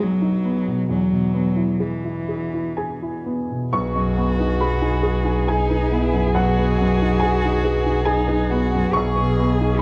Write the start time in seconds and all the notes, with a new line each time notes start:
Already playing: B1 B2 B3 D#4
0.00 F#3 G#4
0.22 D#4
0.45 B3
0.67 B2
0.89 E2 F#3
1.12 B2
1.34 B3
1.56 E4
1.80 E3 G#4
2.04 E4
2.29 G#4
2.54 E4
2.77 G#4 G#5
3.02 E4
3.26 B3
3.51 B2
3.73 B1 F#4 G#4 B4 C#6
3.95 F#2 D#5
4.16 B3 F#5
4.38 D#4 B4
4.61 G#4 B5
4.81 D#4 G#5
5.03 G#4 B4
5.25 D#4 G#5
5.47 D#4 G#4 G#5
5.69 D#4 B4
5.91 B3 E4 F#5
6.13 F#2 F#5
6.34 B1 F#4 B4 F#5
6.56 B3 D#5
6.78 F#2 F#5
6.98 D#4 B4
7.20 G#4 G#5
7.41 G#5
7.45 D#4
7.63 G#4 B4
7.85 D#4 G#5
8.05 D#4 G#4 G#5
8.27 D#4 B4
8.50 B3 F#4 F#5
8.72 F#2 F#5
8.93 B1 G#4 C#6
9.15 B2 B4
9.36 B3 D#5
9.57 D#4 G#4
9.77 D#4